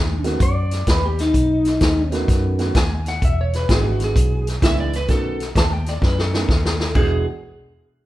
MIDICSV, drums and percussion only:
0, 0, Header, 1, 2, 480
1, 0, Start_track
1, 0, Tempo, 467654
1, 1379, Time_signature, 4, 2, 24, 8
1, 8271, End_track
2, 0, Start_track
2, 0, Title_t, "Drums"
2, 248, Note_on_c, 9, 42, 67
2, 259, Note_on_c, 9, 38, 37
2, 351, Note_off_c, 9, 42, 0
2, 362, Note_off_c, 9, 38, 0
2, 413, Note_on_c, 9, 36, 85
2, 413, Note_on_c, 9, 42, 90
2, 515, Note_off_c, 9, 36, 0
2, 515, Note_off_c, 9, 42, 0
2, 730, Note_on_c, 9, 42, 66
2, 742, Note_on_c, 9, 38, 36
2, 833, Note_off_c, 9, 42, 0
2, 844, Note_off_c, 9, 38, 0
2, 890, Note_on_c, 9, 42, 82
2, 893, Note_on_c, 9, 36, 82
2, 902, Note_on_c, 9, 38, 95
2, 993, Note_off_c, 9, 42, 0
2, 996, Note_off_c, 9, 36, 0
2, 1004, Note_off_c, 9, 38, 0
2, 1218, Note_on_c, 9, 42, 62
2, 1229, Note_on_c, 9, 38, 37
2, 1320, Note_off_c, 9, 42, 0
2, 1332, Note_off_c, 9, 38, 0
2, 1377, Note_on_c, 9, 36, 77
2, 1377, Note_on_c, 9, 42, 81
2, 1479, Note_off_c, 9, 36, 0
2, 1479, Note_off_c, 9, 42, 0
2, 1692, Note_on_c, 9, 42, 61
2, 1704, Note_on_c, 9, 38, 36
2, 1795, Note_off_c, 9, 42, 0
2, 1806, Note_off_c, 9, 38, 0
2, 1853, Note_on_c, 9, 42, 80
2, 1858, Note_on_c, 9, 36, 81
2, 1864, Note_on_c, 9, 38, 100
2, 1956, Note_off_c, 9, 42, 0
2, 1961, Note_off_c, 9, 36, 0
2, 1967, Note_off_c, 9, 38, 0
2, 2176, Note_on_c, 9, 42, 61
2, 2187, Note_on_c, 9, 38, 36
2, 2279, Note_off_c, 9, 42, 0
2, 2290, Note_off_c, 9, 38, 0
2, 2343, Note_on_c, 9, 36, 91
2, 2348, Note_on_c, 9, 42, 81
2, 2359, Note_on_c, 9, 38, 32
2, 2445, Note_off_c, 9, 36, 0
2, 2450, Note_off_c, 9, 42, 0
2, 2462, Note_off_c, 9, 38, 0
2, 2656, Note_on_c, 9, 42, 58
2, 2667, Note_on_c, 9, 38, 36
2, 2758, Note_off_c, 9, 42, 0
2, 2770, Note_off_c, 9, 38, 0
2, 2820, Note_on_c, 9, 42, 77
2, 2822, Note_on_c, 9, 36, 84
2, 2831, Note_on_c, 9, 38, 104
2, 2922, Note_off_c, 9, 42, 0
2, 2924, Note_off_c, 9, 36, 0
2, 2933, Note_off_c, 9, 38, 0
2, 3140, Note_on_c, 9, 42, 61
2, 3151, Note_on_c, 9, 38, 36
2, 3242, Note_off_c, 9, 42, 0
2, 3254, Note_off_c, 9, 38, 0
2, 3305, Note_on_c, 9, 36, 84
2, 3306, Note_on_c, 9, 42, 81
2, 3408, Note_off_c, 9, 36, 0
2, 3408, Note_off_c, 9, 42, 0
2, 3627, Note_on_c, 9, 42, 62
2, 3639, Note_on_c, 9, 38, 35
2, 3730, Note_off_c, 9, 42, 0
2, 3741, Note_off_c, 9, 38, 0
2, 3786, Note_on_c, 9, 42, 82
2, 3787, Note_on_c, 9, 36, 83
2, 3798, Note_on_c, 9, 38, 113
2, 3889, Note_off_c, 9, 42, 0
2, 3890, Note_off_c, 9, 36, 0
2, 3900, Note_off_c, 9, 38, 0
2, 4104, Note_on_c, 9, 42, 65
2, 4115, Note_on_c, 9, 38, 35
2, 4206, Note_off_c, 9, 42, 0
2, 4218, Note_off_c, 9, 38, 0
2, 4267, Note_on_c, 9, 36, 85
2, 4273, Note_on_c, 9, 42, 91
2, 4370, Note_off_c, 9, 36, 0
2, 4375, Note_off_c, 9, 42, 0
2, 4589, Note_on_c, 9, 42, 67
2, 4600, Note_on_c, 9, 38, 36
2, 4692, Note_off_c, 9, 42, 0
2, 4703, Note_off_c, 9, 38, 0
2, 4744, Note_on_c, 9, 36, 86
2, 4745, Note_on_c, 9, 42, 88
2, 4756, Note_on_c, 9, 38, 113
2, 4847, Note_off_c, 9, 36, 0
2, 4848, Note_off_c, 9, 42, 0
2, 4859, Note_off_c, 9, 38, 0
2, 5063, Note_on_c, 9, 42, 64
2, 5074, Note_on_c, 9, 38, 35
2, 5165, Note_off_c, 9, 42, 0
2, 5177, Note_off_c, 9, 38, 0
2, 5217, Note_on_c, 9, 42, 79
2, 5222, Note_on_c, 9, 36, 81
2, 5229, Note_on_c, 9, 38, 31
2, 5320, Note_off_c, 9, 42, 0
2, 5324, Note_off_c, 9, 36, 0
2, 5331, Note_off_c, 9, 38, 0
2, 5544, Note_on_c, 9, 42, 63
2, 5556, Note_on_c, 9, 38, 34
2, 5647, Note_off_c, 9, 42, 0
2, 5658, Note_off_c, 9, 38, 0
2, 5702, Note_on_c, 9, 36, 87
2, 5705, Note_on_c, 9, 42, 81
2, 5716, Note_on_c, 9, 38, 105
2, 5804, Note_off_c, 9, 36, 0
2, 5807, Note_off_c, 9, 42, 0
2, 5819, Note_off_c, 9, 38, 0
2, 6018, Note_on_c, 9, 42, 60
2, 6029, Note_on_c, 9, 38, 34
2, 6120, Note_off_c, 9, 42, 0
2, 6132, Note_off_c, 9, 38, 0
2, 6177, Note_on_c, 9, 36, 87
2, 6186, Note_on_c, 9, 38, 61
2, 6280, Note_off_c, 9, 36, 0
2, 6288, Note_off_c, 9, 38, 0
2, 6351, Note_on_c, 9, 38, 62
2, 6454, Note_off_c, 9, 38, 0
2, 6508, Note_on_c, 9, 38, 83
2, 6611, Note_off_c, 9, 38, 0
2, 6658, Note_on_c, 9, 36, 80
2, 6669, Note_on_c, 9, 38, 70
2, 6761, Note_off_c, 9, 36, 0
2, 6772, Note_off_c, 9, 38, 0
2, 6830, Note_on_c, 9, 38, 91
2, 6933, Note_off_c, 9, 38, 0
2, 6982, Note_on_c, 9, 38, 84
2, 7085, Note_off_c, 9, 38, 0
2, 7134, Note_on_c, 9, 49, 76
2, 7136, Note_on_c, 9, 36, 100
2, 7237, Note_off_c, 9, 49, 0
2, 7239, Note_off_c, 9, 36, 0
2, 8271, End_track
0, 0, End_of_file